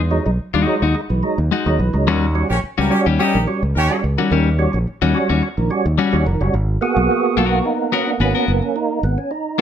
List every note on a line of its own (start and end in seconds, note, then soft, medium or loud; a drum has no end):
0.00 0.18 E2 medium
0.11 0.27 F#3 medium
0.11 0.25 G#3 medium
0.11 0.24 D#4 medium
0.26 0.37 B1 medium
0.26 0.31 G#3 soft
0.26 0.31 D#4 soft
0.39 muted fingered electric bass stroke soft
0.54 0.65 D#2 medium
0.54 0.74 G#3 medium
0.54 0.74 D#4 medium
0.54 0.74 F#4 medium
0.66 0.83 F#3 medium
0.66 0.83 G#3 medium
0.66 0.83 D#4 medium
0.82 0.93 D#2 medium
0.82 0.95 G#3 soft
0.82 0.95 D#4 medium
0.82 0.94 F#4 medium
0.95 1.01 G#3 soft
0.95 1.01 D#4 soft
1.10 1.21 B1 medium
1.10 1.24 E3 medium
1.23 1.39 F#3 medium
1.23 1.39 G#3 medium
1.23 1.39 D#4 medium
1.38 1.49 D#2 medium
1.51 1.69 G#3 medium
1.51 1.69 D#4 medium
1.51 1.69 F#4 loud
1.66 1.77 D#2 medium
1.66 1.80 F#3 medium
1.66 1.80 G#3 medium
1.66 1.81 D#4 medium
1.79 1.91 B1 medium
1.79 1.95 E3 medium
1.93 2.07 C#2 medium
1.93 2.08 F#3 medium
1.93 2.08 G#3 medium
1.93 2.08 D#4 medium
2.07 2.42 D#2 loud
2.07 2.23 D#3 medium
2.07 2.25 G3 medium
2.07 2.25 C#4 medium
2.07 2.25 F#4 loud
2.35 2.51 G3 medium
2.35 2.49 C#4 medium
2.35 2.49 F#4 loud
2.50 2.61 A#1 medium
2.50 2.55 C#4 soft
2.50 2.58 C#4 medium
2.50 2.55 F#4 soft
2.50 2.58 G4 medium
2.50 2.58 A#4 medium
2.50 2.58 C#5 medium
2.64 muted fingered electric bass stroke soft
2.78 2.89 C#2 medium
2.78 2.94 G3 medium
2.78 2.89 A#3 medium
2.78 2.94 C#4 medium
2.78 2.94 F#4 medium
2.78 2.89 G4 medium
2.78 2.89 A#4 medium
2.90 3.07 G3 medium
2.90 3.07 C#4 medium
2.90 3.00 C#4 medium
2.90 3.07 F#4 loud
2.90 3.00 G4 medium
2.90 3.00 A#4 medium
2.90 3.00 C#5 medium
3.06 3.17 D#2 medium
3.06 3.18 G3 medium
3.06 3.19 C#4 medium
3.06 3.18 G4 medium
3.19 3.37 G3 medium
3.19 3.25 C#4 soft
3.19 3.37 C#4 medium
3.19 3.42 D#4 medium
3.19 3.25 F#4 soft
3.19 3.42 G4 loud
3.19 3.37 G4 medium
3.19 3.42 A#4 medium
3.19 3.42 D#5 loud
3.34 3.45 A#1 medium
3.34 3.48 D#3 medium
3.47 3.63 G3 medium
3.47 3.63 C#4 medium
3.47 3.63 F#4 medium
3.63 3.73 C#2 medium
3.75 3.88 D#2 medium
3.75 3.98 C#4 loud
3.75 3.98 G4 loud
3.75 3.98 A#4 loud
3.75 3.98 C#5 loud
3.90 4.04 G3 medium
3.90 4.04 C#4 medium
3.90 4.04 F#4 medium
4.04 4.16 C#2 medium
4.18 4.30 D#3 medium
4.18 4.30 G3 medium
4.18 4.31 C#4 medium
4.18 4.32 F#4 medium
4.31 4.66 D#2 loud
4.31 4.47 D#3 medium
4.31 4.49 G3 medium
4.31 4.49 C#4 loud
4.31 4.49 G4 medium
4.59 4.74 G3 medium
4.59 4.72 C#4 medium
4.59 4.72 F#4 loud
4.73 4.84 A#1 medium
4.73 4.79 C#4 soft
4.73 4.79 F#4 soft
4.87 muted fingered electric bass stroke medium
5.02 5.12 D#2 medium
5.02 5.18 G3 medium
5.02 5.18 C#4 medium
5.02 5.17 F#4 medium
5.14 5.30 G3 medium
5.14 5.30 C#4 medium
5.14 5.30 F#4 loud
5.29 5.40 D#2 medium
5.29 5.42 G3 soft
5.29 5.42 C#4 medium
5.29 5.41 F#4 medium
5.43 5.48 C#4 soft
5.43 5.49 F#4 soft
5.57 5.68 A#1 medium
5.57 5.71 D#3 medium
5.70 5.86 G3 medium
5.70 5.86 C#4 medium
5.70 5.86 F#4 medium
5.86 5.96 D#2 medium
5.98 6.15 G3 medium
5.98 6.16 C#4 medium
5.98 6.16 F#4 medium
6.13 6.24 D#2 medium
6.13 6.27 G3 medium
6.13 6.27 C#4 medium
6.13 6.27 F#4 medium
6.26 6.38 F1 loud
6.26 6.42 D#3 medium
6.41 6.51 F#1 medium
6.41 6.55 G3 medium
6.41 6.55 C#4 medium
6.41 6.55 F#4 medium
6.54 6.76 G#1 loud
6.81 8.99 A#3 medium
6.81 8.47 B3 soft
6.81 7.36 F#4 medium
6.81 7.39 G#4 loud
6.96 7.07 B1 medium
7.37 7.60 B1 medium
7.37 7.58 B3 medium
7.37 7.66 F#4 loud
7.37 7.58 F#4 medium
7.37 7.58 A#4 medium
7.65 7.94 D#4 medium
7.92 8.09 B3 medium
7.92 8.08 C#4 medium
7.92 8.10 F#4 medium
7.92 8.10 A#4 loud
8.07 8.13 D4 medium
8.20 8.32 G#1 medium
8.20 8.34 B3 medium
8.20 8.46 C#4 medium
8.20 8.34 F#4 medium
8.20 8.34 B4 medium
8.35 8.51 B3 medium
8.35 8.51 F#4 medium
8.35 8.51 A#4 medium
8.48 8.60 F#1 medium
8.48 8.63 B3 medium
8.62 8.76 C#4 medium
8.76 9.04 D#4 loud
9.03 9.15 G#1 medium
9.03 9.19 B3 medium
9.18 9.31 C#4 medium
9.31 9.60 D#4 medium